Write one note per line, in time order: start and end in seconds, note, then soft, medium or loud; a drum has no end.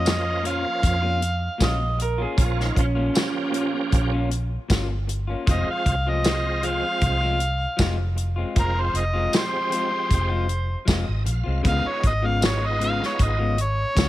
0.00 0.63 F2 medium
0.00 0.11 A#2 soft
0.00 0.10 A#3 medium
0.00 0.44 D#5 medium
0.05 1.03 F3 medium
0.05 1.03 A#3 medium
0.05 1.03 C#4 medium
0.05 1.03 F4 medium
0.05 snare loud
0.05 closed hi-hat medium
0.05 tambourine loud
0.25 muted clean electric guitar stroke soft
0.43 0.64 A#2 medium
0.43 0.65 A#3 medium
0.43 0.64 C#4 medium
0.43 0.63 F4 medium
0.43 closed hi-hat medium
0.47 1.96 F5 loud
0.64 muted clean electric guitar stroke soft
0.82 1.47 F2 medium
0.82 muted clean electric guitar stroke soft
0.82 kick medium
0.82 closed hi-hat medium
1.02 1.19 A#2 medium
1.02 1.20 A#3 medium
1.02 1.20 C#4 medium
1.02 1.21 F4 medium
1.21 muted clean electric guitar stroke soft
1.21 closed hi-hat medium
1.58 2.24 A#1 medium
1.58 1.80 A#2 medium
1.58 1.80 A#3 medium
1.58 1.79 C#4 medium
1.58 1.78 F4 medium
1.58 kick medium
1.58 snare loud
1.58 closed hi-hat medium
1.58 tambourine loud
1.63 1.99 D#5 loud
1.79 muted clean electric guitar stroke soft
1.97 muted clean electric guitar stroke soft
1.97 closed hi-hat medium
2.02 2.21 A#4 medium
2.18 2.43 A#3 medium
2.18 2.42 C#4 medium
2.18 2.41 F4 medium
2.18 2.40 G#4 medium
2.37 2.70 A#1 medium
2.37 2.86 F3 medium
2.37 2.86 A#3 medium
2.37 2.86 C#4 medium
2.37 2.87 F4 medium
2.37 2.61 F4 medium
2.37 kick loud
2.37 closed hi-hat medium
2.57 muted clean electric guitar stroke soft
2.57 snare soft
2.61 2.77 D#4 medium
2.74 3.08 A#1 medium
2.74 muted clean electric guitar stroke soft
2.74 kick medium
2.74 closed hi-hat medium
2.79 4.28 C#4 loud
2.95 3.19 A#2 medium
2.95 3.19 A#3 medium
2.95 3.19 C#4 medium
2.95 3.18 F4 medium
3.14 4.12 F3 medium
3.14 4.12 A#3 medium
3.14 4.12 C#4 medium
3.14 4.13 G4 loud
3.14 snare loud
3.14 closed hi-hat medium
3.14 tambourine loud
3.34 muted clean electric guitar stroke medium
3.51 3.73 A#2 medium
3.51 3.73 A#3 medium
3.51 3.72 C#4 medium
3.51 3.72 F4 medium
3.51 closed hi-hat medium
3.73 muted clean electric guitar stroke soft
3.91 4.56 A#1 medium
3.91 muted clean electric guitar stroke soft
3.91 kick medium
3.91 closed hi-hat medium
4.12 4.28 A#2 medium
4.12 4.29 A#3 medium
4.12 4.29 C#4 medium
4.12 4.30 F4 medium
4.30 muted clean electric guitar stroke soft
4.30 closed hi-hat medium
4.68 5.34 G1 medium
4.68 4.89 A#2 medium
4.68 4.90 A#3 medium
4.68 4.89 C#4 medium
4.68 4.88 F4 medium
4.68 kick medium
4.68 snare loud
4.68 closed hi-hat medium
4.68 tambourine loud
4.90 muted clean electric guitar stroke soft
5.07 muted clean electric guitar stroke soft
5.07 closed hi-hat medium
5.27 5.47 A#3 soft
5.27 5.47 C#4 medium
5.27 5.46 F4 soft
5.46 5.64 F1 loud
5.46 5.67 F3 medium
5.46 5.95 F3 medium
5.46 5.95 G#3 medium
5.46 5.67 G#3 medium
5.46 5.96 C4 medium
5.46 5.67 C4 medium
5.46 5.96 F4 medium
5.46 5.66 F4 medium
5.46 kick loud
5.46 closed hi-hat medium
5.51 5.68 D#5 medium
5.67 6.11 F5 medium
5.67 muted clean electric guitar stroke soft
5.85 6.81 C2 medium
5.85 muted clean electric guitar stroke soft
5.85 kick medium
5.85 closed hi-hat medium
6.07 6.30 F3 medium
6.07 6.29 G#3 medium
6.07 6.29 C4 medium
6.07 6.28 F4 medium
6.07 6.67 D#5 medium
6.24 7.21 F3 medium
6.24 7.21 G#3 medium
6.24 7.22 C4 medium
6.24 7.22 F4 medium
6.24 snare loud
6.24 closed hi-hat medium
6.24 tambourine loud
6.46 muted clean electric guitar stroke soft
6.63 6.83 F3 medium
6.63 6.84 G#3 medium
6.63 6.84 C4 medium
6.63 6.82 F4 medium
6.63 8.14 F5 loud
6.63 closed hi-hat medium
6.84 muted clean electric guitar stroke soft
7.01 7.65 C2 medium
7.01 muted clean electric guitar stroke soft
7.01 kick medium
7.01 closed hi-hat medium
7.22 7.39 F3 medium
7.22 7.39 G#3 medium
7.22 7.40 C4 medium
7.22 7.40 F4 medium
7.40 muted clean electric guitar stroke soft
7.40 closed hi-hat medium
7.77 8.43 F1 loud
7.77 7.98 F3 medium
7.77 7.98 G#3 medium
7.77 7.97 C4 medium
7.77 7.96 F4 medium
7.77 kick medium
7.77 snare loud
7.77 closed hi-hat medium
7.77 tambourine loud
7.97 muted clean electric guitar stroke soft
8.15 muted clean electric guitar stroke soft
8.15 closed hi-hat medium
8.36 8.61 G#3 soft
8.36 8.60 C4 medium
8.36 8.59 F4 medium
8.56 8.88 F1 medium
8.56 9.04 F3 medium
8.56 9.04 G#3 medium
8.56 9.05 C4 medium
8.56 9.05 F4 medium
8.56 8.83 A#4 medium
8.56 kick loud
8.56 closed hi-hat medium
8.74 muted clean electric guitar stroke soft
8.81 8.99 C5 medium
8.93 9.26 F1 medium
8.93 muted clean electric guitar stroke soft
8.93 closed hi-hat medium
8.98 9.34 D#5 medium
9.13 9.37 F3 medium
9.13 9.37 G#3 medium
9.13 9.37 C4 medium
9.13 9.36 F4 medium
9.32 10.30 F3 medium
9.32 10.30 G#3 medium
9.32 10.30 C4 medium
9.32 10.31 G4 medium
9.32 snare loud
9.32 closed hi-hat medium
9.32 tambourine loud
9.37 10.85 C5 loud
9.53 muted clean electric guitar stroke soft
9.70 9.91 F3 medium
9.70 9.91 G#3 medium
9.70 9.90 C4 medium
9.70 9.89 F4 medium
9.70 closed hi-hat medium
9.91 muted clean electric guitar stroke soft
10.08 10.74 F1 medium
10.08 muted clean electric guitar stroke soft
10.08 kick medium
10.08 closed hi-hat medium
10.29 10.46 F3 medium
10.29 10.47 G#3 medium
10.29 10.47 C4 medium
10.29 10.47 F4 medium
10.47 muted clean electric guitar stroke soft
10.47 closed hi-hat medium
10.85 11.05 F1 medium
10.85 11.07 F3 medium
10.85 11.07 G#3 medium
10.85 11.06 C4 medium
10.85 11.05 F4 medium
10.85 11.23 D#5 medium
10.85 kick medium
10.85 snare loud
10.85 closed hi-hat medium
10.85 tambourine loud
11.06 11.24 G#1 medium
11.06 muted clean electric guitar stroke soft
11.24 11.44 A#1 medium
11.24 11.62 F5 medium
11.24 muted clean electric guitar stroke soft
11.24 closed hi-hat medium
11.44 11.63 C2 medium
11.44 11.62 G#3 soft
11.44 11.64 C4 soft
11.44 11.63 F4 soft
11.63 11.82 C#2 loud
11.63 11.84 C#3 medium
11.63 11.84 G#3 medium
11.63 12.13 G#3 medium
11.63 12.13 B3 medium
11.63 11.83 B3 medium
11.63 12.13 D#4 medium
11.63 12.13 F4 medium
11.63 11.82 F4 medium
11.63 kick loud
11.63 closed hi-hat medium
11.68 11.89 F5 loud
11.83 muted clean electric guitar stroke soft
11.83 muted fingered electric bass stroke soft
11.88 12.03 C#5 medium
12.02 12.99 G#1 medium
12.02 muted clean electric guitar stroke soft
12.02 kick medium
12.02 closed hi-hat medium
12.07 12.27 D#5 medium
12.22 12.46 C#3 medium
12.22 12.46 G#3 medium
12.22 12.46 B3 medium
12.22 12.45 F4 medium
12.22 12.42 F5 medium
12.41 13.39 G#3 medium
12.41 13.39 B3 medium
12.41 13.39 D#4 medium
12.41 13.40 F4 medium
12.41 12.68 C#5 medium
12.41 snare loud
12.41 closed hi-hat medium
12.41 tambourine loud
12.61 muted clean electric guitar stroke soft
12.66 12.81 D#5 medium
12.79 13.00 C#3 medium
12.79 13.01 G#3 medium
12.79 13.00 B3 medium
12.79 12.99 F4 medium
12.79 closed hi-hat medium
12.84 13.01 F5 loud
13.00 muted clean electric guitar stroke soft
13.00 snare soft
13.05 13.24 C#5 medium
13.18 13.83 G#1 loud
13.18 muted clean electric guitar stroke soft
13.18 kick medium
13.18 closed hi-hat medium
13.23 13.59 D#5 medium
13.39 13.56 C#3 soft
13.39 13.57 G#3 medium
13.39 13.57 B3 medium
13.39 13.57 F4 medium
13.57 muted clean electric guitar stroke soft
13.57 closed hi-hat medium
13.61 14.09 C#5 loud
13.95 14.09 C#2 medium
13.95 14.09 C#3 medium
13.95 14.09 G#3 medium
13.95 14.09 B3 medium
13.95 14.09 F4 medium
13.95 kick medium
13.95 snare loud
13.95 closed hi-hat medium
13.95 tambourine loud